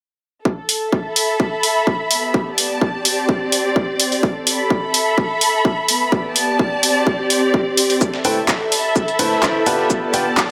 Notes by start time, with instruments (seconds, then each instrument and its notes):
0.45 string section A4, kick
0.69 open hi-hat
0.90 string section E5, kick
1.08 string section B5
1.16 open hi-hat
1.40 kick
1.63 open hi-hat
1.87 kick
2.11 string section B3, open hi-hat
2.22 string section G4
2.34 kick
2.53 string section D5 A5
2.58 open hi-hat
2.81 kick
3.05 string section C4, open hi-hat
3.29 kick
3.52 open hi-hat
3.76 kick
4.00 open hi-hat
4.12 open hi-hat
4.23 string section A4, kick
4.47 open hi-hat
4.53 string section B5
4.70 kick
4.88 string section E5
4.94 open hi-hat
5.18 kick
5.41 open hi-hat
5.65 kick
5.88 string section B3, open hi-hat
6.12 string section G4 D5, kick
6.31 string section A5
6.36 open hi-hat
6.59 kick
6.83 string section C4, open hi-hat
7.07 kick
7.30 open hi-hat
7.54 kick
7.77 open hi-hat
7.90 open hi-hat
8.01 analog synth pad A4 A5, string section A4, kick, shaker
8.12 string section E5, snare
8.25 grand piano A3 E4 A4 B4 C5 G5, open hi-hat, shaker
8.48 string section B5, kick, snare, clap, shaker
8.72 open hi-hat
8.96 kick, shaker
9.08 closed hi-hat
9.19 grand piano A3 E4 A4 B4 C5 B5, open hi-hat, shaker
9.32 snare
9.43 grand piano E4 A4 B4 C5 E5, kick, snare, clap, shaker
9.66 grand piano B3 F4 G4 B4 D5 A5, string section B3, open hi-hat, shaker
9.79 snare
9.90 kick, shaker
10.09 string section G4 D5 A5
10.14 grand piano B3 F4 G4 B4 D5 G5, open hi-hat, shaker
10.37 kick, snare, clap, shaker